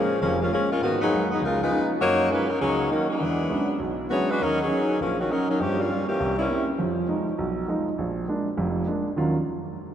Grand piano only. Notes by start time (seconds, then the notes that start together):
0.22 F1 F2
0.52 G#3 A#3 C#4
0.81 G#2
1.11 F#3 G#3 A#3 B3
1.40 C#2 F3
1.70 F3 A#3 B3 C#4 D#4
2.01 F#2
2.30 F#3 A#3 D#4
2.61 C#2
2.90 F#3 A#3 D#4
3.21 E2
3.50 F#3 G#3 C#4 D4 E4
3.79 B1
4.10 F#3 G#3 C#4 D4 E4
4.40 D#2 D#3
4.67 F#3 C#4 D#4
5.00 A#1
5.29 F#3 C#4 D#4
5.60 G2 G3
5.88 G3 A#3 F4
6.20 C2
6.50 A#3 C4 C#4 E4
6.78 F2 F3
7.08 F3 G#3 D#4
7.38 B1
7.68 F3 G#3 D#4
7.98 A#1
8.28 G#3 A#3 D4
8.57 F1 F2
8.87 G#3 A#3 D4
9.16 D#2 D#3 F#3 C#4 F4